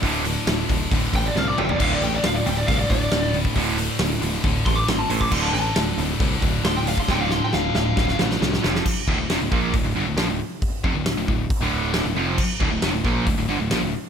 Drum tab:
CC |----------------|x---------------|----------------|x---------------|
HH |o-o-o-o-o-o-----|--o-o-o-o-o-o-o-|o-o-o-o-o-o-o-o-|--o-o-o-o-o-o-o-|
SD |----o-------o---|----o-------o---|----o-------o---|----o-------o---|
T2 |--------------o-|----------------|----------------|----------------|
FT |---------------o|----------------|----------------|----------------|
BD |o-----o-o-o-----|o-------o-o----o|o-------o-o----o|o-------o-o----o|

CC |----------------|x---------------|----------------|x---------------|
HH |----------------|----o---o---o---|o---o---o---o---|----o---o---o---|
SD |o-o-o-o-oooooooo|----o-------o---|----o-------o---|----o-o-----o---|
T2 |----------------|----------------|----------------|----------------|
FT |----------------|----------------|----------------|----------------|
BD |o-------o-------|o-o---o-o-------|o-o---o-o-------|o-o---o-o-------|